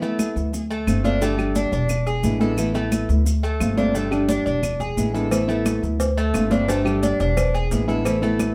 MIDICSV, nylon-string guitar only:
0, 0, Header, 1, 3, 480
1, 0, Start_track
1, 0, Key_signature, 0, "minor"
1, 0, Tempo, 341686
1, 1708, Time_signature, 4, 2, 24, 8
1, 12005, End_track
2, 0, Start_track
2, 0, Title_t, "Nylon-string guitar"
2, 0, Program_c, 0, 24
2, 25, Note_on_c, 0, 64, 72
2, 40, Note_on_c, 0, 59, 67
2, 47, Note_on_c, 0, 57, 55
2, 733, Note_off_c, 0, 57, 0
2, 737, Note_off_c, 0, 64, 0
2, 745, Note_off_c, 0, 59, 0
2, 1221, Note_on_c, 0, 50, 46
2, 1229, Note_on_c, 0, 57, 46
2, 1235, Note_on_c, 0, 60, 50
2, 1243, Note_on_c, 0, 65, 50
2, 1447, Note_off_c, 0, 65, 0
2, 1455, Note_off_c, 0, 50, 0
2, 1459, Note_off_c, 0, 57, 0
2, 1462, Note_off_c, 0, 60, 0
2, 1464, Note_on_c, 0, 65, 70
2, 1478, Note_on_c, 0, 60, 61
2, 1487, Note_on_c, 0, 57, 59
2, 1695, Note_on_c, 0, 50, 78
2, 1697, Note_off_c, 0, 65, 0
2, 1702, Note_off_c, 0, 57, 0
2, 1703, Note_off_c, 0, 60, 0
2, 1708, Note_on_c, 0, 55, 80
2, 1713, Note_on_c, 0, 62, 77
2, 1725, Note_on_c, 0, 67, 86
2, 1921, Note_off_c, 0, 67, 0
2, 1932, Note_off_c, 0, 50, 0
2, 1935, Note_off_c, 0, 62, 0
2, 1938, Note_off_c, 0, 55, 0
2, 1938, Note_on_c, 0, 67, 64
2, 1952, Note_on_c, 0, 62, 70
2, 1961, Note_on_c, 0, 55, 53
2, 2652, Note_off_c, 0, 67, 0
2, 2659, Note_off_c, 0, 62, 0
2, 2664, Note_off_c, 0, 55, 0
2, 3139, Note_on_c, 0, 50, 50
2, 3152, Note_on_c, 0, 56, 56
2, 3156, Note_on_c, 0, 59, 49
2, 3167, Note_on_c, 0, 64, 56
2, 3361, Note_off_c, 0, 64, 0
2, 3373, Note_off_c, 0, 50, 0
2, 3373, Note_off_c, 0, 59, 0
2, 3378, Note_on_c, 0, 64, 64
2, 3379, Note_off_c, 0, 56, 0
2, 3389, Note_on_c, 0, 59, 70
2, 3393, Note_on_c, 0, 56, 60
2, 3405, Note_on_c, 0, 50, 53
2, 3602, Note_off_c, 0, 50, 0
2, 3608, Note_on_c, 0, 52, 81
2, 3612, Note_off_c, 0, 64, 0
2, 3614, Note_off_c, 0, 56, 0
2, 3614, Note_off_c, 0, 59, 0
2, 3620, Note_on_c, 0, 57, 79
2, 3631, Note_on_c, 0, 59, 82
2, 3637, Note_on_c, 0, 64, 85
2, 3838, Note_off_c, 0, 64, 0
2, 3846, Note_off_c, 0, 59, 0
2, 3847, Note_off_c, 0, 52, 0
2, 3853, Note_off_c, 0, 57, 0
2, 3855, Note_on_c, 0, 64, 78
2, 3863, Note_on_c, 0, 59, 68
2, 3878, Note_on_c, 0, 57, 56
2, 4562, Note_off_c, 0, 57, 0
2, 4571, Note_off_c, 0, 64, 0
2, 4575, Note_off_c, 0, 59, 0
2, 5055, Note_on_c, 0, 50, 50
2, 5060, Note_on_c, 0, 57, 47
2, 5069, Note_on_c, 0, 60, 54
2, 5077, Note_on_c, 0, 65, 56
2, 5286, Note_off_c, 0, 65, 0
2, 5291, Note_off_c, 0, 50, 0
2, 5293, Note_off_c, 0, 57, 0
2, 5298, Note_off_c, 0, 60, 0
2, 5303, Note_on_c, 0, 65, 64
2, 5314, Note_on_c, 0, 60, 62
2, 5326, Note_on_c, 0, 57, 52
2, 5535, Note_off_c, 0, 65, 0
2, 5536, Note_on_c, 0, 50, 74
2, 5540, Note_off_c, 0, 60, 0
2, 5541, Note_off_c, 0, 57, 0
2, 5547, Note_on_c, 0, 55, 84
2, 5559, Note_on_c, 0, 62, 85
2, 5560, Note_on_c, 0, 67, 86
2, 5761, Note_off_c, 0, 67, 0
2, 5771, Note_off_c, 0, 50, 0
2, 5776, Note_off_c, 0, 62, 0
2, 5777, Note_off_c, 0, 55, 0
2, 5778, Note_on_c, 0, 67, 68
2, 5793, Note_on_c, 0, 62, 73
2, 5803, Note_on_c, 0, 55, 62
2, 6493, Note_off_c, 0, 67, 0
2, 6500, Note_off_c, 0, 62, 0
2, 6503, Note_off_c, 0, 55, 0
2, 6981, Note_on_c, 0, 50, 43
2, 6989, Note_on_c, 0, 56, 46
2, 6999, Note_on_c, 0, 59, 46
2, 7002, Note_on_c, 0, 64, 53
2, 7207, Note_off_c, 0, 64, 0
2, 7213, Note_off_c, 0, 59, 0
2, 7215, Note_off_c, 0, 50, 0
2, 7218, Note_off_c, 0, 56, 0
2, 7224, Note_on_c, 0, 64, 66
2, 7230, Note_on_c, 0, 59, 56
2, 7241, Note_on_c, 0, 56, 55
2, 7245, Note_on_c, 0, 50, 54
2, 7449, Note_off_c, 0, 50, 0
2, 7455, Note_on_c, 0, 52, 71
2, 7456, Note_off_c, 0, 64, 0
2, 7459, Note_off_c, 0, 59, 0
2, 7460, Note_off_c, 0, 56, 0
2, 7466, Note_on_c, 0, 57, 73
2, 7474, Note_on_c, 0, 59, 78
2, 7482, Note_on_c, 0, 64, 74
2, 7681, Note_off_c, 0, 64, 0
2, 7692, Note_off_c, 0, 52, 0
2, 7697, Note_off_c, 0, 57, 0
2, 7697, Note_off_c, 0, 59, 0
2, 7697, Note_on_c, 0, 64, 66
2, 7714, Note_on_c, 0, 59, 62
2, 7724, Note_on_c, 0, 57, 58
2, 8414, Note_off_c, 0, 64, 0
2, 8416, Note_off_c, 0, 57, 0
2, 8422, Note_off_c, 0, 59, 0
2, 8896, Note_on_c, 0, 50, 51
2, 8907, Note_on_c, 0, 57, 45
2, 8913, Note_on_c, 0, 60, 45
2, 8924, Note_on_c, 0, 65, 51
2, 9120, Note_off_c, 0, 65, 0
2, 9128, Note_off_c, 0, 60, 0
2, 9133, Note_off_c, 0, 50, 0
2, 9137, Note_on_c, 0, 65, 66
2, 9139, Note_off_c, 0, 57, 0
2, 9145, Note_on_c, 0, 60, 58
2, 9157, Note_on_c, 0, 57, 60
2, 9374, Note_off_c, 0, 65, 0
2, 9378, Note_off_c, 0, 60, 0
2, 9380, Note_on_c, 0, 50, 69
2, 9384, Note_off_c, 0, 57, 0
2, 9390, Note_on_c, 0, 55, 79
2, 9396, Note_on_c, 0, 62, 73
2, 9406, Note_on_c, 0, 67, 83
2, 9605, Note_off_c, 0, 67, 0
2, 9616, Note_off_c, 0, 50, 0
2, 9619, Note_off_c, 0, 62, 0
2, 9621, Note_off_c, 0, 55, 0
2, 9622, Note_on_c, 0, 67, 75
2, 9636, Note_on_c, 0, 62, 63
2, 9647, Note_on_c, 0, 55, 67
2, 10338, Note_off_c, 0, 67, 0
2, 10345, Note_off_c, 0, 62, 0
2, 10349, Note_off_c, 0, 55, 0
2, 10830, Note_on_c, 0, 50, 51
2, 10840, Note_on_c, 0, 56, 50
2, 10848, Note_on_c, 0, 59, 53
2, 10854, Note_on_c, 0, 64, 49
2, 11052, Note_off_c, 0, 64, 0
2, 11062, Note_off_c, 0, 50, 0
2, 11062, Note_off_c, 0, 59, 0
2, 11067, Note_off_c, 0, 56, 0
2, 11068, Note_on_c, 0, 64, 76
2, 11079, Note_on_c, 0, 59, 68
2, 11084, Note_on_c, 0, 56, 54
2, 11091, Note_on_c, 0, 50, 49
2, 11300, Note_off_c, 0, 50, 0
2, 11302, Note_off_c, 0, 64, 0
2, 11306, Note_on_c, 0, 52, 68
2, 11307, Note_off_c, 0, 59, 0
2, 11310, Note_off_c, 0, 56, 0
2, 11319, Note_on_c, 0, 57, 79
2, 11321, Note_on_c, 0, 59, 83
2, 11330, Note_on_c, 0, 64, 82
2, 11532, Note_off_c, 0, 64, 0
2, 11541, Note_off_c, 0, 52, 0
2, 11547, Note_off_c, 0, 57, 0
2, 11549, Note_off_c, 0, 59, 0
2, 11549, Note_on_c, 0, 64, 74
2, 11563, Note_on_c, 0, 59, 65
2, 11574, Note_on_c, 0, 57, 63
2, 12005, Note_off_c, 0, 57, 0
2, 12005, Note_off_c, 0, 59, 0
2, 12005, Note_off_c, 0, 64, 0
2, 12005, End_track
3, 0, Start_track
3, 0, Title_t, "Muted nylon-string guitar strokes"
3, 743, Note_on_c, 9, 29, 66
3, 883, Note_off_c, 9, 29, 0
3, 2670, Note_on_c, 9, 29, 71
3, 2811, Note_off_c, 9, 29, 0
3, 4573, Note_on_c, 9, 29, 72
3, 4714, Note_off_c, 9, 29, 0
3, 6497, Note_on_c, 9, 29, 59
3, 6637, Note_off_c, 9, 29, 0
3, 8424, Note_on_c, 9, 29, 60
3, 8565, Note_off_c, 9, 29, 0
3, 10352, Note_on_c, 9, 29, 66
3, 10492, Note_off_c, 9, 29, 0
3, 12005, End_track
0, 0, End_of_file